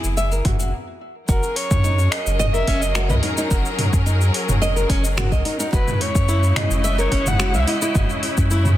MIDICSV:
0, 0, Header, 1, 6, 480
1, 0, Start_track
1, 0, Tempo, 555556
1, 1110, Time_signature, 4, 2, 24, 8
1, 7582, End_track
2, 0, Start_track
2, 0, Title_t, "Kamancheh"
2, 0, Program_c, 0, 110
2, 0, Note_on_c, 0, 68, 100
2, 594, Note_off_c, 0, 68, 0
2, 1111, Note_on_c, 0, 70, 85
2, 1349, Note_on_c, 0, 73, 97
2, 1362, Note_off_c, 0, 70, 0
2, 1823, Note_on_c, 0, 75, 98
2, 1836, Note_off_c, 0, 73, 0
2, 2062, Note_off_c, 0, 75, 0
2, 2067, Note_on_c, 0, 75, 105
2, 2124, Note_off_c, 0, 75, 0
2, 2192, Note_on_c, 0, 76, 102
2, 2432, Note_on_c, 0, 75, 103
2, 2445, Note_off_c, 0, 76, 0
2, 2669, Note_off_c, 0, 75, 0
2, 2674, Note_on_c, 0, 71, 84
2, 2726, Note_off_c, 0, 71, 0
2, 2790, Note_on_c, 0, 70, 84
2, 3236, Note_off_c, 0, 70, 0
2, 4952, Note_on_c, 0, 71, 90
2, 5195, Note_on_c, 0, 73, 94
2, 5208, Note_off_c, 0, 71, 0
2, 5676, Note_on_c, 0, 75, 96
2, 5689, Note_off_c, 0, 73, 0
2, 5909, Note_off_c, 0, 75, 0
2, 5914, Note_on_c, 0, 75, 104
2, 6045, Note_on_c, 0, 73, 98
2, 6058, Note_off_c, 0, 75, 0
2, 6282, Note_on_c, 0, 78, 103
2, 6295, Note_off_c, 0, 73, 0
2, 6526, Note_on_c, 0, 76, 104
2, 6539, Note_off_c, 0, 78, 0
2, 6635, Note_on_c, 0, 75, 103
2, 6648, Note_off_c, 0, 76, 0
2, 7113, Note_off_c, 0, 75, 0
2, 7582, End_track
3, 0, Start_track
3, 0, Title_t, "Nylon-string guitar"
3, 0, Program_c, 1, 24
3, 148, Note_on_c, 1, 76, 94
3, 262, Note_off_c, 1, 76, 0
3, 274, Note_on_c, 1, 70, 77
3, 378, Note_off_c, 1, 70, 0
3, 392, Note_on_c, 1, 66, 74
3, 504, Note_off_c, 1, 66, 0
3, 514, Note_on_c, 1, 66, 69
3, 624, Note_off_c, 1, 66, 0
3, 1111, Note_on_c, 1, 66, 88
3, 1230, Note_off_c, 1, 66, 0
3, 1590, Note_on_c, 1, 63, 86
3, 1709, Note_off_c, 1, 63, 0
3, 2068, Note_on_c, 1, 75, 100
3, 2182, Note_off_c, 1, 75, 0
3, 2195, Note_on_c, 1, 70, 77
3, 2298, Note_off_c, 1, 70, 0
3, 2312, Note_on_c, 1, 61, 103
3, 2430, Note_off_c, 1, 61, 0
3, 2553, Note_on_c, 1, 66, 100
3, 2664, Note_off_c, 1, 66, 0
3, 2677, Note_on_c, 1, 75, 77
3, 2779, Note_off_c, 1, 75, 0
3, 2791, Note_on_c, 1, 63, 78
3, 2910, Note_off_c, 1, 63, 0
3, 2919, Note_on_c, 1, 63, 94
3, 3020, Note_off_c, 1, 63, 0
3, 3033, Note_on_c, 1, 66, 87
3, 3151, Note_off_c, 1, 66, 0
3, 3508, Note_on_c, 1, 63, 83
3, 3629, Note_off_c, 1, 63, 0
3, 3988, Note_on_c, 1, 75, 99
3, 4102, Note_off_c, 1, 75, 0
3, 4115, Note_on_c, 1, 70, 74
3, 4218, Note_off_c, 1, 70, 0
3, 4228, Note_on_c, 1, 61, 102
3, 4349, Note_off_c, 1, 61, 0
3, 4469, Note_on_c, 1, 66, 105
3, 4583, Note_off_c, 1, 66, 0
3, 4595, Note_on_c, 1, 75, 76
3, 4699, Note_off_c, 1, 75, 0
3, 4711, Note_on_c, 1, 63, 78
3, 4827, Note_off_c, 1, 63, 0
3, 4837, Note_on_c, 1, 63, 100
3, 4939, Note_off_c, 1, 63, 0
3, 4952, Note_on_c, 1, 66, 83
3, 5071, Note_off_c, 1, 66, 0
3, 5430, Note_on_c, 1, 64, 89
3, 5549, Note_off_c, 1, 64, 0
3, 5910, Note_on_c, 1, 76, 99
3, 6023, Note_off_c, 1, 76, 0
3, 6035, Note_on_c, 1, 70, 78
3, 6138, Note_off_c, 1, 70, 0
3, 6148, Note_on_c, 1, 61, 103
3, 6268, Note_off_c, 1, 61, 0
3, 6389, Note_on_c, 1, 66, 111
3, 6503, Note_off_c, 1, 66, 0
3, 6518, Note_on_c, 1, 76, 74
3, 6620, Note_off_c, 1, 76, 0
3, 6629, Note_on_c, 1, 64, 76
3, 6746, Note_off_c, 1, 64, 0
3, 6756, Note_on_c, 1, 64, 101
3, 6859, Note_off_c, 1, 64, 0
3, 6869, Note_on_c, 1, 66, 81
3, 6989, Note_off_c, 1, 66, 0
3, 7352, Note_on_c, 1, 64, 84
3, 7470, Note_off_c, 1, 64, 0
3, 7582, End_track
4, 0, Start_track
4, 0, Title_t, "String section"
4, 0, Program_c, 2, 48
4, 0, Note_on_c, 2, 52, 83
4, 0, Note_on_c, 2, 59, 68
4, 0, Note_on_c, 2, 64, 71
4, 0, Note_on_c, 2, 68, 93
4, 595, Note_off_c, 2, 59, 0
4, 595, Note_off_c, 2, 68, 0
4, 596, Note_off_c, 2, 52, 0
4, 616, Note_off_c, 2, 64, 0
4, 1107, Note_on_c, 2, 61, 76
4, 1109, Note_on_c, 2, 54, 83
4, 1109, Note_on_c, 2, 68, 75
4, 1112, Note_on_c, 2, 70, 94
4, 4914, Note_off_c, 2, 61, 0
4, 4915, Note_off_c, 2, 54, 0
4, 4915, Note_off_c, 2, 68, 0
4, 4916, Note_off_c, 2, 70, 0
4, 4948, Note_on_c, 2, 49, 89
4, 4948, Note_on_c, 2, 56, 78
4, 4951, Note_on_c, 2, 64, 91
4, 6869, Note_on_c, 2, 61, 72
4, 7582, Note_off_c, 2, 49, 0
4, 7582, Note_off_c, 2, 56, 0
4, 7582, Note_off_c, 2, 61, 0
4, 7582, Note_off_c, 2, 64, 0
4, 7582, End_track
5, 0, Start_track
5, 0, Title_t, "Sub bass"
5, 0, Program_c, 3, 38
5, 35, Note_on_c, 3, 30, 81
5, 358, Note_off_c, 3, 30, 0
5, 389, Note_on_c, 3, 30, 91
5, 630, Note_off_c, 3, 30, 0
5, 1111, Note_on_c, 3, 30, 99
5, 1215, Note_off_c, 3, 30, 0
5, 1478, Note_on_c, 3, 42, 98
5, 1800, Note_off_c, 3, 42, 0
5, 1956, Note_on_c, 3, 30, 90
5, 2279, Note_off_c, 3, 30, 0
5, 2312, Note_on_c, 3, 30, 100
5, 2675, Note_on_c, 3, 37, 93
5, 2688, Note_off_c, 3, 30, 0
5, 2770, Note_off_c, 3, 37, 0
5, 3031, Note_on_c, 3, 30, 102
5, 3135, Note_off_c, 3, 30, 0
5, 3397, Note_on_c, 3, 42, 104
5, 3720, Note_off_c, 3, 42, 0
5, 3877, Note_on_c, 3, 30, 84
5, 4199, Note_off_c, 3, 30, 0
5, 4229, Note_on_c, 3, 30, 99
5, 4596, Note_on_c, 3, 37, 90
5, 4609, Note_off_c, 3, 30, 0
5, 4691, Note_off_c, 3, 37, 0
5, 4950, Note_on_c, 3, 30, 99
5, 5054, Note_off_c, 3, 30, 0
5, 5316, Note_on_c, 3, 42, 107
5, 5639, Note_off_c, 3, 42, 0
5, 5792, Note_on_c, 3, 30, 91
5, 6117, Note_off_c, 3, 30, 0
5, 6151, Note_on_c, 3, 30, 100
5, 6515, Note_on_c, 3, 37, 91
5, 6528, Note_off_c, 3, 30, 0
5, 6610, Note_off_c, 3, 37, 0
5, 6870, Note_on_c, 3, 30, 102
5, 6974, Note_off_c, 3, 30, 0
5, 7236, Note_on_c, 3, 42, 103
5, 7559, Note_off_c, 3, 42, 0
5, 7582, End_track
6, 0, Start_track
6, 0, Title_t, "Drums"
6, 35, Note_on_c, 9, 82, 61
6, 122, Note_off_c, 9, 82, 0
6, 150, Note_on_c, 9, 82, 52
6, 236, Note_off_c, 9, 82, 0
6, 275, Note_on_c, 9, 82, 31
6, 361, Note_off_c, 9, 82, 0
6, 388, Note_on_c, 9, 45, 79
6, 388, Note_on_c, 9, 46, 98
6, 391, Note_on_c, 9, 36, 101
6, 475, Note_off_c, 9, 45, 0
6, 475, Note_off_c, 9, 46, 0
6, 477, Note_off_c, 9, 36, 0
6, 516, Note_on_c, 9, 82, 65
6, 602, Note_off_c, 9, 82, 0
6, 1111, Note_on_c, 9, 82, 55
6, 1112, Note_on_c, 9, 36, 110
6, 1197, Note_off_c, 9, 82, 0
6, 1198, Note_off_c, 9, 36, 0
6, 1236, Note_on_c, 9, 82, 33
6, 1322, Note_off_c, 9, 82, 0
6, 1351, Note_on_c, 9, 46, 92
6, 1437, Note_off_c, 9, 46, 0
6, 1476, Note_on_c, 9, 45, 80
6, 1477, Note_on_c, 9, 82, 66
6, 1478, Note_on_c, 9, 36, 100
6, 1563, Note_off_c, 9, 45, 0
6, 1564, Note_off_c, 9, 36, 0
6, 1564, Note_off_c, 9, 82, 0
6, 1592, Note_on_c, 9, 82, 53
6, 1679, Note_off_c, 9, 82, 0
6, 1717, Note_on_c, 9, 82, 34
6, 1804, Note_off_c, 9, 82, 0
6, 1831, Note_on_c, 9, 26, 83
6, 1831, Note_on_c, 9, 46, 93
6, 1917, Note_off_c, 9, 26, 0
6, 1917, Note_off_c, 9, 46, 0
6, 1958, Note_on_c, 9, 82, 67
6, 2044, Note_off_c, 9, 82, 0
6, 2072, Note_on_c, 9, 45, 73
6, 2073, Note_on_c, 9, 82, 57
6, 2159, Note_off_c, 9, 45, 0
6, 2159, Note_off_c, 9, 82, 0
6, 2198, Note_on_c, 9, 82, 34
6, 2285, Note_off_c, 9, 82, 0
6, 2311, Note_on_c, 9, 46, 93
6, 2313, Note_on_c, 9, 36, 62
6, 2398, Note_off_c, 9, 46, 0
6, 2399, Note_off_c, 9, 36, 0
6, 2438, Note_on_c, 9, 82, 63
6, 2524, Note_off_c, 9, 82, 0
6, 2550, Note_on_c, 9, 26, 79
6, 2551, Note_on_c, 9, 82, 55
6, 2637, Note_off_c, 9, 26, 0
6, 2637, Note_off_c, 9, 82, 0
6, 2675, Note_on_c, 9, 45, 82
6, 2676, Note_on_c, 9, 82, 33
6, 2761, Note_off_c, 9, 45, 0
6, 2762, Note_off_c, 9, 82, 0
6, 2789, Note_on_c, 9, 46, 88
6, 2875, Note_off_c, 9, 46, 0
6, 2917, Note_on_c, 9, 82, 72
6, 3003, Note_off_c, 9, 82, 0
6, 3031, Note_on_c, 9, 82, 57
6, 3032, Note_on_c, 9, 36, 114
6, 3117, Note_off_c, 9, 82, 0
6, 3119, Note_off_c, 9, 36, 0
6, 3158, Note_on_c, 9, 82, 33
6, 3244, Note_off_c, 9, 82, 0
6, 3271, Note_on_c, 9, 45, 77
6, 3271, Note_on_c, 9, 46, 91
6, 3358, Note_off_c, 9, 45, 0
6, 3358, Note_off_c, 9, 46, 0
6, 3397, Note_on_c, 9, 36, 103
6, 3398, Note_on_c, 9, 82, 63
6, 3484, Note_off_c, 9, 36, 0
6, 3485, Note_off_c, 9, 82, 0
6, 3514, Note_on_c, 9, 82, 56
6, 3600, Note_off_c, 9, 82, 0
6, 3639, Note_on_c, 9, 82, 33
6, 3725, Note_off_c, 9, 82, 0
6, 3753, Note_on_c, 9, 46, 89
6, 3839, Note_off_c, 9, 46, 0
6, 3879, Note_on_c, 9, 45, 75
6, 3880, Note_on_c, 9, 82, 68
6, 3965, Note_off_c, 9, 45, 0
6, 3966, Note_off_c, 9, 82, 0
6, 3994, Note_on_c, 9, 82, 53
6, 4080, Note_off_c, 9, 82, 0
6, 4119, Note_on_c, 9, 82, 34
6, 4205, Note_off_c, 9, 82, 0
6, 4231, Note_on_c, 9, 36, 104
6, 4232, Note_on_c, 9, 46, 93
6, 4317, Note_off_c, 9, 36, 0
6, 4318, Note_off_c, 9, 46, 0
6, 4358, Note_on_c, 9, 82, 69
6, 4445, Note_off_c, 9, 82, 0
6, 4472, Note_on_c, 9, 26, 80
6, 4472, Note_on_c, 9, 45, 75
6, 4473, Note_on_c, 9, 82, 55
6, 4559, Note_off_c, 9, 26, 0
6, 4559, Note_off_c, 9, 45, 0
6, 4560, Note_off_c, 9, 82, 0
6, 4597, Note_on_c, 9, 36, 63
6, 4598, Note_on_c, 9, 82, 36
6, 4683, Note_off_c, 9, 36, 0
6, 4685, Note_off_c, 9, 82, 0
6, 4711, Note_on_c, 9, 46, 90
6, 4798, Note_off_c, 9, 46, 0
6, 4837, Note_on_c, 9, 82, 70
6, 4924, Note_off_c, 9, 82, 0
6, 4950, Note_on_c, 9, 36, 116
6, 4953, Note_on_c, 9, 82, 56
6, 5037, Note_off_c, 9, 36, 0
6, 5039, Note_off_c, 9, 82, 0
6, 5078, Note_on_c, 9, 45, 70
6, 5079, Note_on_c, 9, 82, 34
6, 5164, Note_off_c, 9, 45, 0
6, 5165, Note_off_c, 9, 82, 0
6, 5192, Note_on_c, 9, 46, 91
6, 5279, Note_off_c, 9, 46, 0
6, 5316, Note_on_c, 9, 36, 108
6, 5318, Note_on_c, 9, 82, 70
6, 5402, Note_off_c, 9, 36, 0
6, 5404, Note_off_c, 9, 82, 0
6, 5431, Note_on_c, 9, 82, 59
6, 5518, Note_off_c, 9, 82, 0
6, 5558, Note_on_c, 9, 82, 35
6, 5644, Note_off_c, 9, 82, 0
6, 5670, Note_on_c, 9, 26, 86
6, 5670, Note_on_c, 9, 45, 80
6, 5670, Note_on_c, 9, 46, 97
6, 5756, Note_off_c, 9, 26, 0
6, 5756, Note_off_c, 9, 45, 0
6, 5756, Note_off_c, 9, 46, 0
6, 5797, Note_on_c, 9, 82, 68
6, 5883, Note_off_c, 9, 82, 0
6, 5912, Note_on_c, 9, 82, 60
6, 5999, Note_off_c, 9, 82, 0
6, 6038, Note_on_c, 9, 82, 35
6, 6124, Note_off_c, 9, 82, 0
6, 6150, Note_on_c, 9, 46, 93
6, 6151, Note_on_c, 9, 36, 63
6, 6237, Note_off_c, 9, 36, 0
6, 6237, Note_off_c, 9, 46, 0
6, 6276, Note_on_c, 9, 45, 76
6, 6277, Note_on_c, 9, 82, 73
6, 6362, Note_off_c, 9, 45, 0
6, 6363, Note_off_c, 9, 82, 0
6, 6390, Note_on_c, 9, 26, 77
6, 6391, Note_on_c, 9, 82, 61
6, 6476, Note_off_c, 9, 26, 0
6, 6477, Note_off_c, 9, 82, 0
6, 6516, Note_on_c, 9, 82, 36
6, 6602, Note_off_c, 9, 82, 0
6, 6631, Note_on_c, 9, 46, 90
6, 6718, Note_off_c, 9, 46, 0
6, 6756, Note_on_c, 9, 82, 74
6, 6842, Note_off_c, 9, 82, 0
6, 6869, Note_on_c, 9, 45, 75
6, 6870, Note_on_c, 9, 82, 56
6, 6871, Note_on_c, 9, 36, 120
6, 6956, Note_off_c, 9, 45, 0
6, 6956, Note_off_c, 9, 82, 0
6, 6957, Note_off_c, 9, 36, 0
6, 6995, Note_on_c, 9, 82, 34
6, 7082, Note_off_c, 9, 82, 0
6, 7109, Note_on_c, 9, 46, 79
6, 7196, Note_off_c, 9, 46, 0
6, 7236, Note_on_c, 9, 82, 68
6, 7237, Note_on_c, 9, 36, 102
6, 7323, Note_off_c, 9, 82, 0
6, 7324, Note_off_c, 9, 36, 0
6, 7350, Note_on_c, 9, 82, 57
6, 7437, Note_off_c, 9, 82, 0
6, 7476, Note_on_c, 9, 45, 82
6, 7477, Note_on_c, 9, 82, 34
6, 7563, Note_off_c, 9, 45, 0
6, 7563, Note_off_c, 9, 82, 0
6, 7582, End_track
0, 0, End_of_file